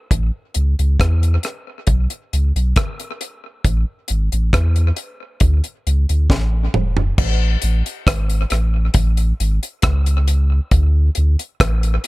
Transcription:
0.11 sub bass A1, kick, closed hi-hat
0.54 sub bass C#2, closed hi-hat
0.79 sub bass C#2, closed hi-hat
1.00 sub bass E2, kick, cross-stick, closed hi-hat
1.23 closed hi-hat
1.43 cross-stick, closed hi-hat
1.87 sub bass B1, kick, closed hi-hat
2.10 closed hi-hat
2.33 sub bass C#2, closed hi-hat
2.56 sub bass B1, closed hi-hat
2.76 kick, cross-stick, closed hi-hat
3.00 closed hi-hat
3.21 closed hi-hat
3.64 sub bass A1, kick, closed hi-hat
4.08 sub bass G#1, closed hi-hat
4.32 sub bass A1, closed hi-hat
4.53 sub bass E2, kick, cross-stick, closed hi-hat
4.76 closed hi-hat
4.96 closed hi-hat
5.40 sub bass D2, kick, closed hi-hat
5.64 closed hi-hat
5.87 sub bass C#2, closed hi-hat
6.09 sub bass D2, closed hi-hat
6.30 sub bass A1, kick, snare
6.74 sub bass E1, mid tom
6.97 floor tom
7.18 sub bass A1, kick, crash
7.62 sub bass A1, closed hi-hat
7.86 closed hi-hat
8.07 sub bass G#1, kick, cross-stick, closed hi-hat
8.30 closed hi-hat
8.50 sub bass A1, cross-stick, closed hi-hat
8.94 sub bass A1, kick, closed hi-hat
9.17 closed hi-hat
9.40 sub bass G#1, closed hi-hat
9.63 closed hi-hat
9.82 sub bass C#2, kick, cross-stick, closed hi-hat
10.06 closed hi-hat
10.28 closed hi-hat
10.71 sub bass D2, kick, closed hi-hat
11.15 sub bass D2, closed hi-hat
11.39 closed hi-hat
11.60 sub bass A1, kick, cross-stick, closed hi-hat
11.83 closed hi-hat
12.04 closed hi-hat

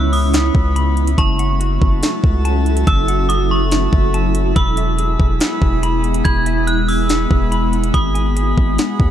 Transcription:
Already playing: 808-style bass C#2, ambient pad C#3 G#3 B3 C#4 E4, synth texture E4 C#5 B5, clean electric guitar E4 C#5 B5, synth bell E6
0.13 synth bell D#6, open hi-hat
0.34 clean electric guitar B3, snare, closed hi-hat
0.55 808-style bass C#2, kick
0.76 clean electric guitar B5, closed hi-hat
0.97 closed hi-hat
1.07 closed hi-hat
1.18 808-style bass F#1, ambient pad F#3 C#4 E4 F#4 A4, synth texture F#4 E5 A5, clean electric guitar A5, synth bell C#6, kick, closed hi-hat
1.39 clean electric guitar F#5, closed hi-hat
1.60 clean electric guitar F#4, closed hi-hat
1.82 808-style bass F#1, kick
2.03 clean electric guitar A3, snare, closed hi-hat
2.24 808-style bass C#2, kick
2.45 clean electric guitar A5, closed hi-hat
2.66 closed hi-hat
2.77 closed hi-hat
2.87 808-style bass F#1, clean electric guitar A5, synth bell E6, kick, closed hi-hat
3.08 clean electric guitar F#5, closed hi-hat
3.29 clean electric guitar F#4, synth bell D#6, closed hi-hat
3.51 synth bell C#6
3.71 clean electric guitar A3, snare, closed hi-hat
3.93 808-style bass F#1, kick
4.14 clean electric guitar A5, closed hi-hat
4.35 closed hi-hat
4.56 808-style bass E1, ambient pad G#3 B3 E4, synth texture G#4 B5, clean electric guitar B5, synth bell E6, kick, closed hi-hat
4.77 clean electric guitar E5, closed hi-hat
4.98 clean electric guitar G#4, closed hi-hat
5.20 808-style bass E1, kick
5.40 clean electric guitar B3, snare, closed hi-hat
5.62 808-style bass E1, kick
5.83 clean electric guitar B5, closed hi-hat
6.04 closed hi-hat
6.14 closed hi-hat
6.25 808-style bass E1, clean electric guitar B5, synth bell G#6, kick, closed hi-hat
6.46 clean electric guitar E5, closed hi-hat
6.67 clean electric guitar G#4, synth bell F#6, closed hi-hat
6.88 synth bell E6, open hi-hat
7.09 clean electric guitar B3, snare, closed hi-hat
7.31 808-style bass E1, kick
7.52 clean electric guitar B5, closed hi-hat
7.73 closed hi-hat
7.84 closed hi-hat
7.94 808-style bass G#1, ambient pad F#4, synth texture G#4 F#5, clean electric guitar B5, synth bell D#6, kick, closed hi-hat
8.15 clean electric guitar G#5, closed hi-hat
8.37 clean electric guitar G#4, closed hi-hat
8.57 808-style bass G#1, kick
8.78 clean electric guitar B3, snare, closed hi-hat
9.00 808-style bass D#2, kick

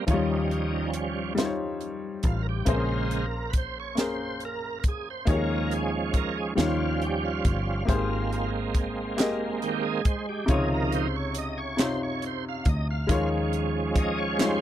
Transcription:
0.07 fingered electric bass D#2, upright piano D#3 F3 D#4 F4 C#5, tonewheel organ F3 G3 C#4 D#4, kick, closed hi-hat
0.14 upright piano G3
0.51 closed hi-hat
0.93 closed hi-hat
1.35 upright piano G3 D#4 F4 C5, snare, closed hi-hat
1.45 upright piano C#5
1.81 closed hi-hat
2.23 fingered electric bass A1, kick, closed hi-hat
2.27 tonewheel organ F4
2.43 tonewheel organ A#4
2.49 tonewheel organ G4
2.65 fingered electric bass A#1, upright piano A#2 A#3 C4 G#4 C5, tonewheel organ C#3 G#3 C5, kick, closed hi-hat
2.70 upright piano C#4, tonewheel organ A#4
3.11 tonewheel organ A#4, closed hi-hat
3.50 tonewheel organ B4, kick, closed hi-hat
3.57 tonewheel organ C5
3.80 tonewheel organ C#5
3.95 upright piano A#3 C#4 G#4 A#4, snare, closed hi-hat
4.01 tonewheel organ C5
4.40 closed hi-hat
4.45 tonewheel organ A#4
4.80 tonewheel organ A#4, closed hi-hat
4.84 fingered electric bass D2, kick
4.88 tonewheel organ G#4
5.10 tonewheel organ C5
5.25 fingered electric bass D#2, upright piano D#3 A#3 D#4 G4 C#5, tonewheel organ F3 G#3 C#4, kick, closed hi-hat
5.30 upright piano G#4, tonewheel organ A#4
5.71 tonewheel organ G#4, closed hi-hat
6.14 tonewheel organ A#4, kick, closed hi-hat
6.38 tonewheel organ G#4
6.55 fingered electric bass D#2, upright piano D#3 G3 D#4 F4 C#5, tonewheel organ F3 G3 C#4, snare, closed hi-hat
6.59 tonewheel organ F4
7.02 tonewheel organ G4, closed hi-hat
7.25 tonewheel organ F4
7.45 fingered electric bass G1, kick, closed hi-hat
7.85 fingered electric bass G#1, upright piano G#2 A#3 G4 G#4, tonewheel organ G#3 A#3 C4, kick, closed hi-hat
7.89 upright piano C5
8.32 closed hi-hat
8.74 kick, closed hi-hat
9.17 upright piano A#3 G4 G#4 D#5, snare, clap, closed hi-hat
9.62 tonewheel organ D#3 A#3 C4 G4, closed hi-hat
9.84 tonewheel organ G#4
10.05 fingered electric bass C2, tonewheel organ C5, kick, closed hi-hat
10.29 tonewheel organ G4
10.46 fingered electric bass C#2, upright piano C3 C#3 D#4 F4 C#5, tonewheel organ D#3, kick, closed hi-hat
10.50 tonewheel organ F3 D#4 G#4
10.74 tonewheel organ A#4
10.92 tonewheel organ C5, closed hi-hat
11.16 tonewheel organ C#5
11.35 tonewheel organ D#5, closed hi-hat
11.58 tonewheel organ C#5
11.77 upright piano C3 D#4 F4 C#5, tonewheel organ C5, snare, clap, closed hi-hat
12.03 tonewheel organ C#5
12.22 closed hi-hat
12.26 tonewheel organ C5
12.49 tonewheel organ F5
12.65 fingered electric bass D2, tonewheel organ D#5, kick, closed hi-hat
12.90 tonewheel organ F5
13.07 fingered electric bass D#2, upright piano D#3 G#3 D#4 F4 C#5, tonewheel organ F3 G#3 C#4, kick, closed hi-hat
13.53 closed hi-hat
13.95 tonewheel organ D#5, kick, closed hi-hat
14.18 tonewheel organ C#5
14.38 upright piano G3 D#4 F4 C#5, tonewheel organ C5, snare, clap, closed hi-hat
14.44 upright piano G#3

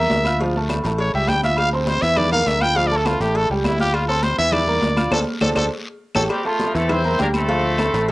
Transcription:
Already playing: upright piano A#3 A#4 A#5, trumpet E5
0.10 fingered electric bass D2, cowbell, high conga, low timbale, short guiro
0.24 upright piano F4 F5 F6, high conga, low agogo, short guiro, claves
0.39 upright piano F3 F4 F5, cowbell, high conga, low agogo, long guiro
0.55 upright piano A3 A4 A5, high conga
0.69 cowbell, high conga, low timbale, low agogo, short guiro, claves
0.84 fingered electric bass A1, upright piano A3 A4 A5, cowbell, high conga, low agogo, short guiro
0.98 trumpet C#5, cowbell, high conga, low agogo, long guiro
1.14 fingered electric bass C#2, upright piano G3 G4 G5, trumpet E5, high conga
1.27 fingered electric bass D2, trumpet G5, cowbell, high conga, low timbale, low agogo, short guiro, claves
1.42 upright piano F4 F5 F6, trumpet E5, cowbell, high conga, short guiro
1.57 trumpet F5, cowbell, high conga, low agogo, long guiro, claves
1.72 upright piano C4 C5 C6, trumpet A4, high conga
1.87 trumpet C5, cowbell, high conga, low timbale, low agogo, short guiro
2.02 fingered electric bass E2, upright piano E3 E4 E5, trumpet E5, short guiro
2.16 trumpet D5, cowbell, high conga, low conga, low agogo, long guiro, claves
2.31 upright piano A#3 A#4 A#5, trumpet F5, high conga, low conga, low agogo
2.46 fingered electric bass D2, trumpet E5, cowbell, high conga, low timbale, short guiro
2.61 upright piano F4 F5 F6, trumpet G5, high conga, low agogo, short guiro, claves
2.75 upright piano F3 F4 F5, trumpet F5, cowbell, high conga, low agogo, long guiro
2.87 upright piano A3 A4, trumpet D5
2.91 upright piano A5
2.97 trumpet A4
3.06 trumpet F4, cowbell, high conga, low timbale, low agogo, short guiro, claves
3.20 fingered electric bass A1, upright piano A3 A4 A5, trumpet G4, cowbell, high conga, low agogo, short guiro
3.35 trumpet A4, cowbell, high conga, low agogo, long guiro
3.50 fingered electric bass C#2, upright piano G3 G4 G5, trumpet C#4, high conga
3.64 fingered electric bass D2, trumpet E4, cowbell, high conga, low timbale, low agogo, short guiro, claves
3.79 upright piano F4 F5 F6, trumpet G4, cowbell, high conga, short guiro
3.94 trumpet F4, cowbell, high conga, low agogo, long guiro, claves
4.08 upright piano C4 C5 C6, trumpet A4, high conga
4.22 trumpet C5, cowbell, high conga, low timbale, low agogo, short guiro
4.38 fingered electric bass E2, upright piano E3 E4 E5, trumpet E5, short guiro
4.52 trumpet D5, cowbell, high conga, low conga, low agogo, long guiro, claves
4.67 upright piano A#3 A#4 A#5, high conga, low conga, low agogo
4.81 fingered electric bass D2, cowbell, high conga, low timbale, short guiro
4.97 upright piano F4 F5 F6, high conga, low agogo, short guiro, claves
5.11 fingered electric bass D2, upright piano A4 C5 D5, trumpet A4, cowbell, high conga, high timbale, long guiro, claves
5.41 fingered electric bass D2, upright piano A4 C5 D5, trumpet A4, cowbell, high conga, high timbale, long guiro, claves
5.55 fingered electric bass D2, upright piano A4 C5 D5, trumpet A4, cowbell, high conga, high timbale, long guiro, claves
6.15 fingered electric bass A1, upright piano G4 A4 C#5, trumpet A4, cowbell, high conga, high timbale, long guiro, claves
6.29 horn section G3 C4 G4, cowbell, high conga, low agogo, long guiro, claves
6.45 horn section F3 A3 F4, upright piano A3 A4 A5, high conga
6.60 cowbell, high conga, low timbale, low agogo, short guiro
6.75 fingered electric bass E2, upright piano E3 E4 E5, horn section A3 C4 A4, short guiro
6.89 horn section C4 E4 C5, cowbell, high conga, low conga, low agogo, long guiro, claves
7.04 upright piano A#3 A#4 A#5, high conga, low agogo
7.19 fingered electric bass D2, upright piano G3 G4 G5, horn section A#3 D4 A#4, cowbell, high conga, low timbale, short guiro
7.34 horn section A3 C4 A4, high conga, low agogo, short guiro, claves
7.48 upright piano F3 F4 F5, cowbell, high conga, low agogo, long guiro
7.64 high conga
7.78 upright piano A3 A4 A5, cowbell, high conga, low timbale, low agogo, short guiro, claves
7.93 fingered electric bass A1, upright piano A3 A4 A5, cowbell, high conga, low agogo, short guiro
8.09 cowbell

